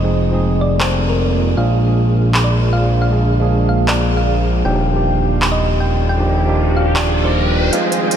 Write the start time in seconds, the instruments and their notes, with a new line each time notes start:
Already playing: analog synth bass F1, ambient pad D#3 G#3 A#3 F4, tine electric piano F3 G#3 C4 D#4 G#4, synth pluck D#5
0.02 tine electric piano F3 G#3 C4 D#4 G#4
0.30 tine electric piano F3 G#3 C4 D#4 G#4
0.61 synth pluck D5
0.80 synth pluck C5, clap
1.09 synth pluck A#4
1.56 analog synth bass A#1, ambient pad D3 G#3, tine electric piano F3 G#3 A#3 D4 G#4, synth pluck F5
1.84 tine electric piano F3 G#3 A#3 D4
1.88 tine electric piano G#4
2.34 clap
2.44 synth pluck D5
2.73 synth pluck F5
3.02 synth pluck F5
3.10 tine electric piano F3 G#3 A#3 D4 G#4
3.38 tine electric piano F3 G#3 A#3 D4
3.42 tine electric piano G#4
3.69 synth pluck F5
3.88 synth pluck D5, clap
4.17 synth pluck F5
4.64 analog synth bass D#1, ambient pad D#3 G3 F4 D5, tine electric piano F3 A#3 D4 D#4 G4, synth pluck G5, riser
4.92 tine electric piano F3 A#3 D4 D#4
4.96 tine electric piano G4
5.42 clap
5.52 synth pluck D#5
5.80 synth pluck G5
6.09 synth pluck G5
6.18 tine electric piano F3 A#3 D4 D#4 G4
6.46 tine electric piano F3 A#3 D4 D#4
6.50 tine electric piano G4
6.77 synth pluck F5
6.96 synth pluck D5, clap
7.24 tine electric piano F3 A#3 D4 D#4 G4, synth pluck C5
7.72 ambient pad D#3 G#3 C4 F4, tine electric piano F3 G#3 C4 D#4 G#4, supersaw synth F4 C5 D#5 G5 G#5, synth pluck F5, closed hi-hat
7.92 closed hi-hat
8.00 tine electric piano F3 G#3 C4 D#4, supersaw synth F4 C5 D#5 G5 G#5
8.04 tine electric piano G#4
8.11 closed hi-hat